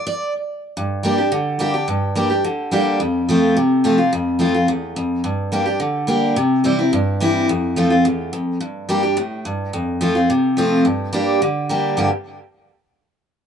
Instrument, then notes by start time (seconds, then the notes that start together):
steel-string acoustic guitar
0.07 D5
0.77 G2
1.03 G3 A#3 D4 G4
1.18 D4 G4
1.32 D3
1.59 G3 A#3 D4 G4
1.74 D4 G4
1.88 G2
2.15 G3 A#3 D4 G4
2.30 D4 G4
2.44 D3
2.71 G3 A#3 D4 G4
3.00 F2
3.29 F3 A3 C4 F4
3.57 C3
3.84 F3 A3 C4 F4
3.98 C4 F4
4.13 F2
4.39 F3 A3 C4 F4
4.54 C4 F4
4.68 E2
4.96 F2
5.24 G2
5.52 G3 A#3 D4 G4
5.66 D4 G4
5.80 D3
6.07 G3 A#3 D4 G4
6.36 C3
6.64 E3 G3 C4 E4
6.79 C4 E4
6.93 G2
7.20 E3 G3 C4 E4
7.49 F2
7.76 F3 A3 C4 F4
7.90 C4 F4
8.05 E2
8.33 F2
8.61 G2
8.89 G3 A#3 D4 G4
9.03 D4 G4
9.17 A2
9.45 G2
9.73 F2
10.01 F3 A3 C4 F4
10.15 C4 F4
10.30 C3
10.57 F3 A3 C4 F4
10.85 G2
11.13 G3 A#3 D4 G4
11.42 D3
11.69 G3 A#3 D4 G4
11.97 G2 D3 G3 A#3 D4 G4